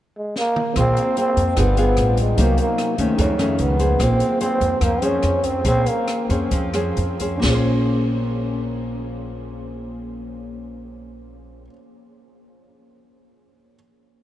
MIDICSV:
0, 0, Header, 1, 6, 480
1, 0, Start_track
1, 0, Key_signature, -5, "minor"
1, 0, Tempo, 405405
1, 900, Time_signature, 4, 2, 24, 8
1, 5700, Tempo, 426439
1, 7620, Tempo, 459418
1, 8580, Tempo, 475436
1, 15436, End_track
2, 0, Start_track
2, 0, Title_t, "Grand piano"
2, 0, Program_c, 0, 0
2, 869, Note_on_c, 0, 60, 45
2, 894, Note_on_c, 0, 65, 43
2, 919, Note_on_c, 0, 68, 43
2, 942, Note_on_c, 0, 72, 45
2, 1091, Control_c, 0, 64, 127
2, 1824, Note_off_c, 0, 60, 0
2, 1827, Note_on_c, 0, 62, 42
2, 1831, Note_off_c, 0, 65, 0
2, 1849, Note_on_c, 0, 65, 40
2, 1850, Note_off_c, 0, 68, 0
2, 1861, Note_off_c, 0, 72, 0
2, 1872, Control_c, 0, 64, 0
2, 1877, Note_on_c, 0, 68, 37
2, 1892, Note_on_c, 0, 71, 47
2, 2083, Control_c, 0, 64, 127
2, 2781, Note_on_c, 0, 63, 44
2, 2783, Note_off_c, 0, 62, 0
2, 2794, Note_off_c, 0, 65, 0
2, 2803, Note_on_c, 0, 66, 43
2, 2808, Note_off_c, 0, 68, 0
2, 2816, Note_off_c, 0, 71, 0
2, 2832, Note_on_c, 0, 70, 38
2, 2834, Control_c, 0, 64, 0
2, 2854, Note_on_c, 0, 72, 46
2, 3005, Control_c, 0, 64, 127
2, 3716, Note_off_c, 0, 63, 0
2, 3734, Note_on_c, 0, 63, 55
2, 3750, Note_off_c, 0, 66, 0
2, 3757, Note_on_c, 0, 68, 52
2, 3765, Note_off_c, 0, 70, 0
2, 3776, Note_off_c, 0, 72, 0
2, 3783, Note_on_c, 0, 69, 50
2, 3793, Control_c, 0, 64, 0
2, 3806, Note_on_c, 0, 73, 62
2, 4010, Control_c, 0, 64, 127
2, 4695, Note_off_c, 0, 63, 0
2, 4701, Note_on_c, 0, 58, 46
2, 4706, Note_off_c, 0, 68, 0
2, 4719, Note_off_c, 0, 69, 0
2, 4719, Note_on_c, 0, 65, 42
2, 4731, Note_off_c, 0, 73, 0
2, 4750, Note_on_c, 0, 68, 43
2, 4751, Control_c, 0, 64, 0
2, 4768, Note_on_c, 0, 72, 48
2, 4956, Control_c, 0, 64, 127
2, 8513, Note_on_c, 0, 61, 54
2, 8523, Note_off_c, 0, 58, 0
2, 8532, Note_off_c, 0, 65, 0
2, 8545, Note_off_c, 0, 68, 0
2, 8550, Note_on_c, 0, 65, 50
2, 8553, Note_off_c, 0, 72, 0
2, 8591, Note_on_c, 0, 68, 51
2, 8596, Control_c, 0, 64, 0
2, 8638, Note_on_c, 0, 72, 56
2, 8777, Control_c, 0, 64, 127
2, 12788, Note_off_c, 0, 61, 0
2, 12824, Note_off_c, 0, 65, 0
2, 12865, Note_off_c, 0, 68, 0
2, 12912, Note_off_c, 0, 72, 0
2, 14953, Control_c, 0, 64, 0
2, 15436, End_track
3, 0, Start_track
3, 0, Title_t, "Nylon-string guitar"
3, 0, Program_c, 1, 24
3, 898, Note_on_c, 1, 58, 50
3, 906, Note_on_c, 1, 68, 43
3, 911, Note_on_c, 1, 72, 56
3, 1343, Note_off_c, 1, 68, 0
3, 1343, Note_off_c, 1, 72, 0
3, 1386, Note_on_c, 1, 68, 48
3, 1393, Note_on_c, 1, 72, 54
3, 1836, Note_off_c, 1, 58, 0
3, 1843, Note_off_c, 1, 68, 0
3, 1847, Note_off_c, 1, 72, 0
3, 1862, Note_on_c, 1, 59, 51
3, 1864, Note_on_c, 1, 55, 46
3, 1866, Note_on_c, 1, 65, 45
3, 1875, Note_on_c, 1, 68, 46
3, 2061, Note_off_c, 1, 59, 0
3, 2065, Note_off_c, 1, 65, 0
3, 2066, Note_off_c, 1, 68, 0
3, 2102, Note_on_c, 1, 59, 59
3, 2109, Note_on_c, 1, 65, 59
3, 2111, Note_on_c, 1, 68, 63
3, 2782, Note_off_c, 1, 59, 0
3, 2783, Note_off_c, 1, 65, 0
3, 2786, Note_off_c, 1, 68, 0
3, 2797, Note_off_c, 1, 55, 0
3, 2819, Note_on_c, 1, 48, 49
3, 2821, Note_on_c, 1, 54, 48
3, 2824, Note_on_c, 1, 58, 48
3, 2828, Note_on_c, 1, 63, 53
3, 3500, Note_off_c, 1, 54, 0
3, 3501, Note_off_c, 1, 58, 0
3, 3504, Note_off_c, 1, 63, 0
3, 3533, Note_on_c, 1, 51, 58
3, 3539, Note_on_c, 1, 57, 61
3, 3541, Note_on_c, 1, 61, 62
3, 3754, Note_off_c, 1, 48, 0
3, 3772, Note_on_c, 1, 41, 47
3, 3976, Note_off_c, 1, 51, 0
3, 3978, Note_off_c, 1, 57, 0
3, 3980, Note_off_c, 1, 61, 0
3, 4005, Note_on_c, 1, 51, 55
3, 4016, Note_on_c, 1, 57, 55
3, 4016, Note_on_c, 1, 61, 58
3, 4453, Note_off_c, 1, 51, 0
3, 4455, Note_off_c, 1, 57, 0
3, 4457, Note_off_c, 1, 61, 0
3, 4495, Note_on_c, 1, 68, 52
3, 4500, Note_on_c, 1, 72, 59
3, 4709, Note_off_c, 1, 41, 0
3, 4727, Note_on_c, 1, 58, 48
3, 5177, Note_off_c, 1, 72, 0
3, 5178, Note_off_c, 1, 68, 0
3, 5217, Note_on_c, 1, 68, 50
3, 5225, Note_on_c, 1, 72, 62
3, 5671, Note_off_c, 1, 58, 0
3, 5696, Note_on_c, 1, 53, 50
3, 5896, Note_off_c, 1, 68, 0
3, 5900, Note_off_c, 1, 72, 0
3, 5931, Note_on_c, 1, 61, 52
3, 5936, Note_on_c, 1, 68, 58
3, 5944, Note_on_c, 1, 72, 60
3, 6602, Note_off_c, 1, 61, 0
3, 6604, Note_off_c, 1, 68, 0
3, 6606, Note_off_c, 1, 72, 0
3, 6615, Note_off_c, 1, 53, 0
3, 6640, Note_on_c, 1, 61, 52
3, 6641, Note_on_c, 1, 58, 49
3, 6644, Note_on_c, 1, 68, 44
3, 6650, Note_on_c, 1, 72, 53
3, 7330, Note_off_c, 1, 61, 0
3, 7333, Note_off_c, 1, 68, 0
3, 7336, Note_off_c, 1, 72, 0
3, 7371, Note_on_c, 1, 61, 58
3, 7378, Note_on_c, 1, 68, 54
3, 7380, Note_on_c, 1, 72, 58
3, 7595, Note_off_c, 1, 58, 0
3, 7622, Note_on_c, 1, 53, 47
3, 7818, Note_off_c, 1, 61, 0
3, 7819, Note_off_c, 1, 68, 0
3, 7821, Note_off_c, 1, 72, 0
3, 7849, Note_on_c, 1, 61, 56
3, 7854, Note_on_c, 1, 68, 59
3, 7860, Note_on_c, 1, 72, 63
3, 8294, Note_off_c, 1, 61, 0
3, 8295, Note_off_c, 1, 68, 0
3, 8296, Note_off_c, 1, 72, 0
3, 8336, Note_on_c, 1, 61, 47
3, 8340, Note_on_c, 1, 68, 50
3, 8345, Note_on_c, 1, 72, 54
3, 8535, Note_on_c, 1, 58, 57
3, 8557, Note_off_c, 1, 53, 0
3, 8584, Note_off_c, 1, 61, 0
3, 8596, Note_on_c, 1, 61, 56
3, 8633, Note_off_c, 1, 68, 0
3, 8645, Note_on_c, 1, 68, 58
3, 8677, Note_off_c, 1, 72, 0
3, 8689, Note_on_c, 1, 72, 58
3, 12850, Note_off_c, 1, 58, 0
3, 12909, Note_off_c, 1, 61, 0
3, 12959, Note_off_c, 1, 68, 0
3, 13003, Note_off_c, 1, 72, 0
3, 15436, End_track
4, 0, Start_track
4, 0, Title_t, "Trombone"
4, 0, Program_c, 2, 57
4, 206, Note_on_c, 2, 56, 70
4, 417, Note_off_c, 2, 56, 0
4, 451, Note_on_c, 2, 58, 88
4, 883, Note_off_c, 2, 58, 0
4, 928, Note_on_c, 2, 60, 96
4, 1361, Note_off_c, 2, 60, 0
4, 1402, Note_on_c, 2, 60, 84
4, 1883, Note_on_c, 2, 59, 73
4, 1901, Note_off_c, 2, 60, 0
4, 2111, Note_off_c, 2, 59, 0
4, 2133, Note_on_c, 2, 59, 75
4, 2563, Note_off_c, 2, 59, 0
4, 2616, Note_on_c, 2, 56, 69
4, 2859, Note_on_c, 2, 58, 78
4, 2877, Note_off_c, 2, 56, 0
4, 3079, Note_off_c, 2, 58, 0
4, 3090, Note_on_c, 2, 58, 76
4, 3521, Note_off_c, 2, 58, 0
4, 4035, Note_on_c, 2, 57, 66
4, 4269, Note_on_c, 2, 59, 86
4, 4286, Note_off_c, 2, 57, 0
4, 4760, Note_on_c, 2, 60, 86
4, 4777, Note_off_c, 2, 59, 0
4, 5225, Note_off_c, 2, 60, 0
4, 5232, Note_on_c, 2, 60, 91
4, 5720, Note_on_c, 2, 58, 81
4, 5737, Note_off_c, 2, 60, 0
4, 5960, Note_on_c, 2, 61, 94
4, 5977, Note_off_c, 2, 58, 0
4, 6428, Note_on_c, 2, 60, 80
4, 6445, Note_off_c, 2, 61, 0
4, 6653, Note_off_c, 2, 60, 0
4, 6671, Note_on_c, 2, 60, 92
4, 6904, Note_on_c, 2, 58, 78
4, 6921, Note_off_c, 2, 60, 0
4, 7382, Note_off_c, 2, 58, 0
4, 15436, End_track
5, 0, Start_track
5, 0, Title_t, "Upright bass"
5, 0, Program_c, 3, 32
5, 899, Note_on_c, 3, 34, 81
5, 1122, Note_off_c, 3, 34, 0
5, 1617, Note_on_c, 3, 41, 74
5, 1841, Note_off_c, 3, 41, 0
5, 1859, Note_on_c, 3, 31, 78
5, 2305, Note_off_c, 3, 31, 0
5, 2340, Note_on_c, 3, 33, 82
5, 2785, Note_off_c, 3, 33, 0
5, 2818, Note_on_c, 3, 36, 79
5, 3041, Note_off_c, 3, 36, 0
5, 3534, Note_on_c, 3, 39, 85
5, 3759, Note_off_c, 3, 39, 0
5, 3770, Note_on_c, 3, 41, 78
5, 4219, Note_off_c, 3, 41, 0
5, 4258, Note_on_c, 3, 37, 88
5, 4703, Note_off_c, 3, 37, 0
5, 4734, Note_on_c, 3, 34, 82
5, 4958, Note_off_c, 3, 34, 0
5, 5457, Note_on_c, 3, 41, 82
5, 5683, Note_off_c, 3, 41, 0
5, 5695, Note_on_c, 3, 41, 75
5, 6131, Note_off_c, 3, 41, 0
5, 6168, Note_on_c, 3, 41, 88
5, 6608, Note_off_c, 3, 41, 0
5, 6639, Note_on_c, 3, 34, 83
5, 6863, Note_off_c, 3, 34, 0
5, 7367, Note_on_c, 3, 41, 82
5, 7601, Note_off_c, 3, 41, 0
5, 7614, Note_on_c, 3, 41, 80
5, 8057, Note_off_c, 3, 41, 0
5, 8093, Note_on_c, 3, 41, 84
5, 8546, Note_off_c, 3, 41, 0
5, 8575, Note_on_c, 3, 34, 84
5, 12848, Note_off_c, 3, 34, 0
5, 15436, End_track
6, 0, Start_track
6, 0, Title_t, "Drums"
6, 423, Note_on_c, 9, 38, 40
6, 542, Note_off_c, 9, 38, 0
6, 666, Note_on_c, 9, 47, 53
6, 785, Note_off_c, 9, 47, 0
6, 898, Note_on_c, 9, 37, 52
6, 898, Note_on_c, 9, 42, 56
6, 901, Note_on_c, 9, 36, 54
6, 1016, Note_off_c, 9, 37, 0
6, 1016, Note_off_c, 9, 42, 0
6, 1019, Note_off_c, 9, 36, 0
6, 1145, Note_on_c, 9, 42, 38
6, 1263, Note_off_c, 9, 42, 0
6, 1383, Note_on_c, 9, 42, 40
6, 1501, Note_off_c, 9, 42, 0
6, 1619, Note_on_c, 9, 36, 21
6, 1622, Note_on_c, 9, 42, 43
6, 1737, Note_off_c, 9, 36, 0
6, 1741, Note_off_c, 9, 42, 0
6, 1855, Note_on_c, 9, 37, 53
6, 1855, Note_on_c, 9, 42, 58
6, 1857, Note_on_c, 9, 36, 53
6, 1973, Note_off_c, 9, 37, 0
6, 1973, Note_off_c, 9, 42, 0
6, 1975, Note_off_c, 9, 36, 0
6, 2097, Note_on_c, 9, 42, 42
6, 2215, Note_off_c, 9, 42, 0
6, 2330, Note_on_c, 9, 37, 52
6, 2330, Note_on_c, 9, 42, 37
6, 2448, Note_off_c, 9, 37, 0
6, 2448, Note_off_c, 9, 42, 0
6, 2573, Note_on_c, 9, 42, 40
6, 2574, Note_on_c, 9, 36, 21
6, 2692, Note_off_c, 9, 42, 0
6, 2693, Note_off_c, 9, 36, 0
6, 2814, Note_on_c, 9, 36, 53
6, 2814, Note_on_c, 9, 42, 60
6, 2932, Note_off_c, 9, 42, 0
6, 2933, Note_off_c, 9, 36, 0
6, 3051, Note_on_c, 9, 42, 42
6, 3169, Note_off_c, 9, 42, 0
6, 3296, Note_on_c, 9, 37, 59
6, 3296, Note_on_c, 9, 42, 40
6, 3414, Note_off_c, 9, 37, 0
6, 3414, Note_off_c, 9, 42, 0
6, 3532, Note_on_c, 9, 36, 23
6, 3532, Note_on_c, 9, 42, 41
6, 3650, Note_off_c, 9, 42, 0
6, 3651, Note_off_c, 9, 36, 0
6, 3771, Note_on_c, 9, 42, 52
6, 3772, Note_on_c, 9, 36, 53
6, 3889, Note_off_c, 9, 42, 0
6, 3891, Note_off_c, 9, 36, 0
6, 4016, Note_on_c, 9, 37, 52
6, 4016, Note_on_c, 9, 42, 37
6, 4134, Note_off_c, 9, 37, 0
6, 4134, Note_off_c, 9, 42, 0
6, 4246, Note_on_c, 9, 42, 37
6, 4364, Note_off_c, 9, 42, 0
6, 4491, Note_on_c, 9, 36, 21
6, 4493, Note_on_c, 9, 42, 38
6, 4609, Note_off_c, 9, 36, 0
6, 4611, Note_off_c, 9, 42, 0
6, 4732, Note_on_c, 9, 36, 53
6, 4734, Note_on_c, 9, 37, 57
6, 4734, Note_on_c, 9, 42, 51
6, 4851, Note_off_c, 9, 36, 0
6, 4853, Note_off_c, 9, 37, 0
6, 4853, Note_off_c, 9, 42, 0
6, 4974, Note_on_c, 9, 42, 39
6, 5092, Note_off_c, 9, 42, 0
6, 5217, Note_on_c, 9, 42, 43
6, 5335, Note_off_c, 9, 42, 0
6, 5456, Note_on_c, 9, 36, 21
6, 5460, Note_on_c, 9, 42, 40
6, 5574, Note_off_c, 9, 36, 0
6, 5579, Note_off_c, 9, 42, 0
6, 5697, Note_on_c, 9, 36, 55
6, 5697, Note_on_c, 9, 37, 57
6, 5697, Note_on_c, 9, 42, 52
6, 5809, Note_off_c, 9, 36, 0
6, 5810, Note_off_c, 9, 37, 0
6, 5810, Note_off_c, 9, 42, 0
6, 5932, Note_on_c, 9, 42, 41
6, 6045, Note_off_c, 9, 42, 0
6, 6164, Note_on_c, 9, 37, 46
6, 6164, Note_on_c, 9, 42, 39
6, 6276, Note_off_c, 9, 37, 0
6, 6276, Note_off_c, 9, 42, 0
6, 6400, Note_on_c, 9, 36, 21
6, 6400, Note_on_c, 9, 42, 42
6, 6512, Note_off_c, 9, 36, 0
6, 6512, Note_off_c, 9, 42, 0
6, 6637, Note_on_c, 9, 36, 58
6, 6637, Note_on_c, 9, 42, 56
6, 6749, Note_off_c, 9, 36, 0
6, 6749, Note_off_c, 9, 42, 0
6, 6880, Note_on_c, 9, 42, 44
6, 6993, Note_off_c, 9, 42, 0
6, 7121, Note_on_c, 9, 37, 62
6, 7121, Note_on_c, 9, 42, 45
6, 7233, Note_off_c, 9, 37, 0
6, 7233, Note_off_c, 9, 42, 0
6, 7367, Note_on_c, 9, 36, 21
6, 7371, Note_on_c, 9, 42, 41
6, 7479, Note_off_c, 9, 36, 0
6, 7484, Note_off_c, 9, 42, 0
6, 7612, Note_on_c, 9, 42, 54
6, 7614, Note_on_c, 9, 36, 52
6, 7717, Note_off_c, 9, 42, 0
6, 7719, Note_off_c, 9, 36, 0
6, 7845, Note_on_c, 9, 37, 49
6, 7845, Note_on_c, 9, 42, 37
6, 7950, Note_off_c, 9, 37, 0
6, 7950, Note_off_c, 9, 42, 0
6, 8087, Note_on_c, 9, 42, 35
6, 8191, Note_off_c, 9, 42, 0
6, 8327, Note_on_c, 9, 42, 39
6, 8328, Note_on_c, 9, 36, 20
6, 8431, Note_off_c, 9, 42, 0
6, 8432, Note_off_c, 9, 36, 0
6, 8575, Note_on_c, 9, 38, 62
6, 8575, Note_on_c, 9, 49, 49
6, 8576, Note_on_c, 9, 36, 63
6, 8676, Note_off_c, 9, 38, 0
6, 8676, Note_off_c, 9, 49, 0
6, 8677, Note_off_c, 9, 36, 0
6, 15436, End_track
0, 0, End_of_file